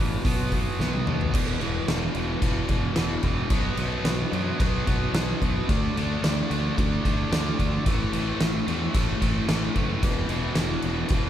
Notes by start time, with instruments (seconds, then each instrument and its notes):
Already playing: fingered electric bass A1, distorted electric guitar E2 B2
0.00 distorted electric guitar E3
0.24 fingered electric bass B1, distorted electric guitar B2 F#3 B3, kick, open hi-hat
0.51 distorted electric guitar B2 F#3 B3, kick, open hi-hat
0.79 fingered electric bass B1, distorted electric guitar B2 F#3 B3, snare
0.94 high tom
1.06 fingered electric bass D#2, distorted electric guitar B2 F#3 B3, mid tom
1.21 floor tom
1.33 fingered electric bass E1, distorted electric guitar E2 B2 E3, kick, crash
1.60 fingered electric bass E1, distorted electric guitar E2 B2 E3, crash
1.88 fingered electric bass E1, distorted electric guitar E2 B2 E3, snare, crash
2.15 fingered electric bass E1, distorted electric guitar E2 B2 E3, crash
2.42 fingered electric bass E1, distorted electric guitar E2 B2 E3, kick, crash
2.69 fingered electric bass E1, distorted electric guitar E2 B2 E3, kick, crash
2.96 fingered electric bass E1, distorted electric guitar E2 B2 E3, snare, crash
3.23 fingered electric bass E1, distorted electric guitar E2 B2 E3, kick, crash
3.50 fingered electric bass B1, distorted electric guitar B2 F#3 B3, kick, crash
3.77 fingered electric bass B1, distorted electric guitar B2 F#3 B3, crash
4.04 fingered electric bass B1, distorted electric guitar B2 F#3 B3, snare, crash
4.32 fingered electric bass F#2, distorted electric guitar B2 F#3 B3, crash
4.59 fingered electric bass B1, distorted electric guitar B2 F#3 B3, kick, crash
4.87 fingered electric bass B1, distorted electric guitar B2 F#3 B3, kick, crash
5.13 fingered electric bass B1, distorted electric guitar B2 F#3 B3, snare, crash
5.42 fingered electric bass B1, distorted electric guitar B2 F#3 B3, kick, crash
5.69 fingered electric bass D2, distorted electric guitar D3 A3 D4, kick, crash
5.96 fingered electric bass D2, distorted electric guitar D3 A3 D4, crash
6.23 fingered electric bass D2, distorted electric guitar D3 A3 D4, snare, crash
6.50 fingered electric bass D2, distorted electric guitar D3 A3 D4, crash
6.77 fingered electric bass D2, distorted electric guitar D3 A3 D4, kick, crash
7.04 fingered electric bass D2, distorted electric guitar D3 A3 D4, kick, crash
7.30 fingered electric bass D2, distorted electric guitar D3 A3 D4, snare, crash
7.57 fingered electric bass D2, distorted electric guitar D3 A3 D4, kick, crash
7.85 fingered electric bass A1, distorted electric guitar A2 E3 A3, kick, crash
8.12 fingered electric bass A1, distorted electric guitar A2 E3 A3, crash
8.40 fingered electric bass A1, distorted electric guitar A2 E3 A3, snare, crash
8.67 fingered electric bass E2, distorted electric guitar A2 E3 A3, crash
8.93 fingered electric bass A1, distorted electric guitar A2 E3 A3, kick, crash
9.21 fingered electric bass A1, distorted electric guitar A2 E3 A3, kick, crash
9.48 fingered electric bass A1, distorted electric guitar A2 E3 A3, snare, crash
9.75 fingered electric bass F#1, distorted electric guitar A2 E3 A3, kick, crash
10.01 fingered electric bass E1, distorted electric guitar E2 B2 E3, kick, crash
10.29 fingered electric bass E1, distorted electric guitar E2 B2 E3, crash
10.55 fingered electric bass E1, distorted electric guitar E2 B2 E3, snare, crash
10.82 fingered electric bass E1, distorted electric guitar E2 B2 E3, crash
11.08 fingered electric bass E1, distorted electric guitar E2 B2 E3, kick, crash